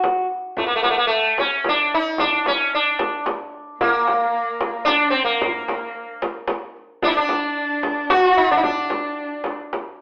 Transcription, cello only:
3.80 4.89 A#3 medium
4.87 5.15 D4 medium
5.14 5.27 C4 medium
5.28 6.32 A#3 medium
7.03 7.16 D4 medium
7.16 8.12 D4 medium
8.10 8.52 F#4 medium
8.51 8.64 D4 medium
8.65 9.55 D4 medium

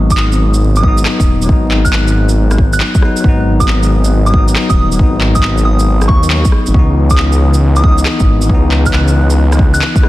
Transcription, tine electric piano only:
0.00 0.79 F#3 medium
0.00 0.82 B3 medium
0.00 0.84 D#4 medium
0.80 1.43 F#3 medium
0.84 1.47 B3 medium
0.84 1.50 D#4 loud
1.44 2.98 F#3 medium
1.48 3.00 B3 medium
1.53 3.02 D#4 medium
3.01 3.19 F#3 medium
3.01 3.23 B3 medium
3.01 3.24 D#4 medium
3.21 4.29 F#3 medium
3.21 4.32 B3 medium
3.28 4.34 D#4 loud
4.30 4.94 F#3 medium
4.30 4.98 B3 medium
4.38 5.00 D#4 loud
4.95 6.49 F#3 medium
4.99 6.51 B3 medium
4.99 6.53 D#4 medium
6.71 7.79 E3 medium
6.71 7.82 B3 medium
6.79 7.84 D#4 loud
7.80 8.45 E3 medium
7.84 8.48 B3 medium
7.88 8.50 D#4 loud
8.46 10.00 E3 medium
8.46 10.01 B3 medium
8.54 10.04 D#4 medium
10.01 10.09 E3 medium
10.01 10.09 B3 medium
10.01 10.09 D#4 medium

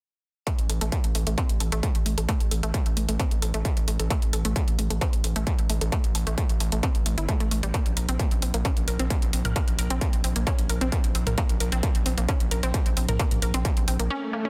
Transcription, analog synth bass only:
0.59 0.68 A1 medium
0.70 0.79 A1 loud
0.81 0.91 A1 medium
1.04 1.13 A1 medium
1.15 1.25 A1 loud
1.27 1.36 A1 medium
1.50 1.59 A1 medium
1.60 1.70 A1 loud
1.72 1.81 A1 medium
1.95 2.04 A1 medium
2.06 2.16 A1 loud
2.18 2.27 A1 medium
2.40 2.50 A1 medium
2.51 2.61 A1 loud
2.63 2.72 A1 medium
2.86 2.95 A1 medium
2.97 3.07 A1 loud
3.09 3.18 A1 medium
3.31 3.41 A1 medium
3.42 3.52 A1 loud
3.54 3.63 A1 medium
3.77 3.86 A1 medium
3.88 3.98 A1 loud
4.00 4.09 A1 medium
4.22 4.31 A1 medium
4.33 4.43 A1 loud
4.45 4.54 A1 medium
4.68 4.77 A1 medium
4.79 4.89 A1 medium
4.90 5.00 A1 medium
5.13 5.22 A1 medium
5.24 5.34 A1 loud
5.36 5.45 A1 medium
5.59 5.68 A1 medium
5.70 5.79 A1 loud
5.81 5.91 A1 medium
6.04 6.13 A1 medium
6.15 6.25 A1 loud
6.27 6.36 A1 medium
6.49 6.59 A1 medium
6.60 6.70 A1 loud
6.72 6.81 A1 medium
6.95 7.04 A1 medium
7.06 7.16 A1 loud
7.18 7.27 G1 medium
7.40 7.50 A1 medium
7.51 7.61 A1 loud
7.63 7.72 A1 medium
7.86 7.95 A#1 medium
7.97 8.07 A#1 loud
8.08 8.18 A#1 medium
8.31 8.41 A#1 medium
8.42 8.52 A#1 loud
8.54 8.63 A#1 medium
8.77 8.86 A#1 medium
8.88 8.98 A#1 loud
8.99 9.09 A#1 medium
9.22 9.31 A#1 medium
9.33 9.43 A#1 medium
9.45 9.54 A#1 medium
9.68 9.77 A#1 medium
9.79 9.89 A#1 loud
9.90 10.00 A#1 medium
10.13 10.22 A#1 medium
10.24 10.34 A#1 loud
10.36 10.45 A#1 medium
10.59 10.68 A#1 medium
10.70 10.79 A#1 loud
10.81 10.91 A#1 medium
11.04 11.13 A#1 medium
11.15 11.25 A#1 loud
11.27 11.36 A#1 medium
11.50 11.59 A#1 medium
11.60 11.70 A#1 loud
11.72 11.81 A#1 medium
11.95 12.04 A#1 medium
12.06 12.16 A#1 loud
12.18 12.27 A#1 medium
12.40 12.50 A#1 medium
12.51 12.61 A#1 loud
12.63 12.72 A#1 medium
12.86 12.95 A#1 medium
12.97 13.07 A#1 loud
13.09 13.18 A#1 medium
13.31 13.41 A#1 medium
13.42 13.52 A#1 loud
13.54 13.63 A#1 medium
13.77 13.86 A#1 medium
13.88 13.98 A#1 loud
13.99 14.09 A#1 medium

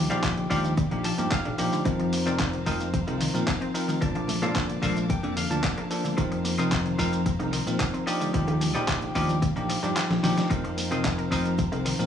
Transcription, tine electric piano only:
0.10 0.47 F3 medium
0.10 0.47 D#4 medium
0.10 0.48 G4 medium
0.50 0.72 F3 loud
0.50 0.72 D4 medium
0.50 0.72 D#4 medium
0.50 0.73 G4 loud
0.91 1.13 F3 medium
0.91 1.13 D4 medium
0.91 1.13 D#4 medium
0.91 1.13 G4 medium
1.18 1.55 F3 medium
1.18 1.55 D#4 medium
1.18 1.56 G4 medium
1.58 1.82 F3 medium
1.58 1.82 D4 medium
1.58 1.82 D#4 medium
1.58 1.83 G4 loud
1.85 2.23 F3 medium
1.85 2.23 C4 medium
1.85 2.23 D#4 medium
1.85 2.23 A#4 loud
2.26 2.63 F3 medium
2.26 2.63 C4 medium
2.26 2.63 D#4 medium
2.26 2.64 A#4 medium
2.66 2.88 F3 loud
2.66 2.88 C4 medium
2.66 2.89 D#4 medium
2.66 2.89 A#4 loud
3.07 3.29 F3 medium
3.07 3.29 C4 medium
3.07 3.29 D#4 medium
3.07 3.29 A#4 medium
3.34 3.71 F3 medium
3.34 3.71 C4 medium
3.34 3.72 D#4 medium
3.34 3.72 A#4 medium
3.74 3.98 F3 medium
3.74 3.98 C4 medium
3.74 3.99 D#4 medium
3.74 3.99 A#4 loud
4.01 4.39 F3 medium
4.01 4.39 A#3 medium
4.01 4.39 D4 medium
4.01 4.39 A5 loud
4.42 4.79 F3 medium
4.42 4.80 A#3 medium
4.42 4.80 D4 medium
4.42 4.80 A5 medium
4.82 5.04 F3 loud
4.82 5.05 A#3 loud
4.82 5.05 D4 loud
4.82 5.05 A4 loud
5.23 5.45 F3 medium
5.23 5.45 A#3 medium
5.23 5.45 D4 medium
5.23 5.46 A4 medium
5.50 5.87 F3 medium
5.50 5.88 A#3 medium
5.50 5.88 D4 medium
5.50 5.88 A5 medium
5.90 6.14 F3 medium
5.90 6.15 A#3 medium
5.90 6.15 D4 medium
5.90 6.15 A4 loud
6.17 6.55 F3 medium
6.17 6.55 C4 medium
6.17 6.55 D#4 medium
6.17 6.56 A#4 loud
6.58 6.96 F3 medium
6.58 6.96 C4 medium
6.58 6.96 D#4 medium
6.58 6.96 A#4 medium
6.98 7.21 F3 loud
6.98 7.21 C4 medium
6.98 7.21 D#4 loud
6.98 7.21 A#4 loud
7.39 7.61 F3 medium
7.39 7.61 C4 medium
7.39 7.62 D#4 medium
7.39 7.62 A#4 medium
7.66 8.04 F3 medium
7.66 8.04 C4 medium
7.66 8.04 D#4 medium
7.66 8.04 A#4 medium
8.07 8.31 F3 medium
8.07 8.31 D4 medium
8.07 8.31 D#4 medium
8.07 8.31 G4 loud
8.34 8.71 F3 medium
8.34 8.72 D#4 medium
8.34 8.72 G4 loud
8.74 9.12 F3 medium
8.74 9.12 D#4 medium
8.74 9.12 G4 medium
9.15 9.37 F3 loud
9.15 9.37 D4 medium
9.15 9.37 D#4 medium
9.15 9.38 G4 loud
9.56 9.78 F3 medium
9.56 9.78 D4 medium
9.56 9.78 D#4 medium
9.56 9.78 G4 loud
9.83 10.20 F3 medium
9.83 10.20 D#4 medium
9.83 10.21 G4 medium
10.23 10.47 F3 medium
10.23 10.47 D4 medium
10.23 10.47 D#4 medium
10.23 10.47 G4 loud
10.50 10.88 F3 medium
10.50 10.88 C4 medium
10.50 10.88 D#4 medium
10.50 10.88 A#4 loud
10.91 11.28 F3 medium
10.91 11.28 C4 medium
10.91 11.28 D#4 medium
10.91 11.29 A#4 medium
11.31 11.53 F3 loud
11.31 11.53 C4 medium
11.31 11.54 D#4 medium
11.31 11.54 A#4 loud
11.72 11.94 F3 medium
11.72 11.94 C4 medium
11.72 11.94 D#4 medium
11.72 11.94 A#4 medium
11.99 12.06 F3 medium
11.99 12.06 C4 medium
11.99 12.06 D#4 medium
11.99 12.06 A#4 medium

